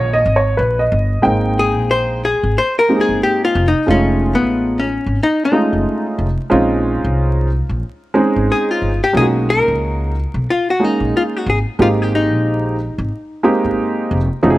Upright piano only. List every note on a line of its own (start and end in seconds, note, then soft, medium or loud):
0.00 0.15 C#5 loud
0.13 0.37 D#5 loud
0.36 0.59 C#5 medium
0.57 0.81 B4 medium
0.79 1.21 D#5 medium
1.22 2.19 G#3 medium
1.22 2.19 A#3 medium
1.22 2.19 C4 medium
1.22 2.20 D#4 medium
1.22 2.20 G5 medium
2.89 3.61 G#3 medium
2.89 3.61 A#3 medium
2.89 3.62 C4 medium
2.89 3.62 D#4 medium
2.89 2.97 G4 medium
2.96 3.65 G#4 medium
3.86 4.83 G#3 medium
3.86 4.83 A3 medium
3.86 4.84 C#4 medium
3.86 4.84 D#4 medium
3.86 4.84 F4 medium
5.52 6.25 G#3 medium
5.52 6.25 A3 medium
5.52 6.25 C#4 medium
5.52 6.25 D#4 medium
5.52 6.25 F4 medium
6.50 7.47 G#3 medium
6.50 7.47 C4 medium
6.50 7.47 C#4 medium
6.50 7.47 D#4 medium
6.50 7.48 F4 loud
8.14 8.88 G#3 medium
8.14 8.88 C4 medium
8.14 8.88 C#4 medium
8.14 8.88 D#4 medium
8.14 8.88 G#4 medium
9.13 10.10 G#3 medium
9.13 10.10 A#3 medium
9.13 10.10 C#4 medium
9.13 10.11 D#4 medium
9.13 9.23 F4 medium
9.21 10.14 F#4 medium
10.80 11.52 G#3 medium
10.80 11.52 A#3 medium
10.80 11.53 C#4 medium
10.80 11.53 D#4 medium
10.80 11.53 G#4 medium
11.79 12.75 G#3 medium
11.79 12.75 A#3 medium
11.79 12.75 C4 medium
11.79 12.75 D#4 medium
11.79 12.76 G4 medium
13.43 14.16 G#3 medium
13.43 14.16 A#3 medium
13.43 14.16 C4 medium
13.43 14.17 D#4 medium
13.43 14.17 G4 loud
14.43 14.58 F3 loud
14.43 14.58 A3 medium
14.43 14.58 C#4 medium
14.43 14.58 D#4 medium
14.43 14.51 F#4 medium
14.50 14.58 G#4 medium